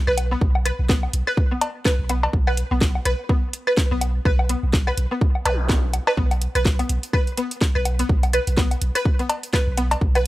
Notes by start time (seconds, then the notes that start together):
0.07 B1 B4, claves
0.18 closed hi-hat, low woodblock
0.31 B3
0.41 B1, kick
0.55 low woodblock
0.65 B4, closed hi-hat, claves
0.79 B1
0.89 B3, kick, snare
1.03 low woodblock
1.13 B1, closed hi-hat
1.27 B4, claves
1.37 kick
1.51 B3
1.61 closed hi-hat, cowbell
1.85 B4, kick, snare, claves
1.99 B1
2.09 B3, closed hi-hat, low woodblock
2.23 cowbell
2.33 B1, kick
2.47 B4, claves, low woodblock
2.57 closed hi-hat
2.71 B1 B3
2.81 kick, snare
2.95 low woodblock
3.05 B1 B4, closed hi-hat, claves
3.29 B3, kick
3.53 closed hi-hat
3.67 B4, claves
3.77 kick, snare
3.91 B1 B3
4.01 closed hi-hat, low woodblock
4.25 B1 B4, kick, claves
4.39 low woodblock
4.49 B3, closed hi-hat
4.63 B1
4.73 kick, snare
4.87 B4, claves, low woodblock
4.97 B1, closed hi-hat
5.11 B3
5.21 kick
5.35 low woodblock
5.45 B1 B4, closed hi-hat, cowbell, zap, claves
5.69 B3, kick, snare
5.93 closed hi-hat, low woodblock
6.07 B4, cowbell, claves
6.17 B1 B3, kick
6.31 closed hi-hat, low woodblock
6.42 closed hi-hat
6.55 B1 B4, closed hi-hat, claves
6.65 kick, snare
6.79 B3, closed hi-hat, low woodblock
6.89 B1, closed hi-hat
7.03 closed hi-hat
7.13 B4, kick, claves
7.27 closed hi-hat
7.37 B3, closed hi-hat
7.51 closed hi-hat
7.61 kick, snare
7.75 B1 B4, claves
7.85 closed hi-hat, low woodblock
7.99 B3, closed hi-hat
8.09 B1, kick
8.23 closed hi-hat, low woodblock
8.33 B4, closed hi-hat, claves
8.47 B1, closed hi-hat
8.57 B3, kick, snare
8.71 closed hi-hat, low woodblock
8.82 B1, closed hi-hat
8.95 B4, closed hi-hat, claves
9.05 kick
9.19 B3, closed hi-hat
9.30 closed hi-hat, cowbell
9.43 closed hi-hat
9.53 B4, kick, snare, claves
9.67 B1
9.78 B3, closed hi-hat, low woodblock
9.91 closed hi-hat, cowbell
10.01 B1, kick
10.15 B4, closed hi-hat, claves, low woodblock